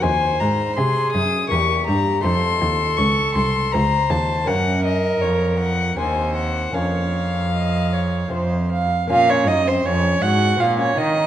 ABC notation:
X:1
M:3/4
L:1/16
Q:1/4=80
K:Bbm
V:1 name="Violin"
a2 b2 c'2 e'2 ^c'2 b2 | c'4 d'2 c'2 b2 =a2 | g2 e2 d2 g2 a2 g2 | f8- f2 z2 |
F D E C D2 G2 F D E2 |]
V:2 name="Violin"
c4 A4 =G4 | =A8 c4 | B8 c4 | d4 e2 d2 c2 f2 |
f d e c d2 g2 f d e2 |]
V:3 name="Lute"
[Gc]8 [B,=GB]4 | [=A,Fc]12 | [B,DB]8 [B,Cc]4 | [B,DB]8 [=A,Cc]4 |
[B,D]8 C4 |]
V:4 name="Lute" clef=bass
E,,2 A,,2 C,2 G,,2 =E,,2 =G,,2 | F,,2 E,,2 z6 E,,2 | G,,4 F,,4 E,,4 | F,,8 F,,3 z |
B,,2 G,,2 F,,2 A,,2 B,,2 E,2 |]
V:5 name="Cello" clef=bass
E,,2 A,,2 C,2 G,,2 =E,,2 =G,,2 | F,,2 E,,2 D,,2 C,,2 D,,2 E,,2 | G,,4 F,,4 E,,4 | F,,8 F,,3 z |
B,,2 G,,2 F,,2 A,,2 B,,2 E,2 |]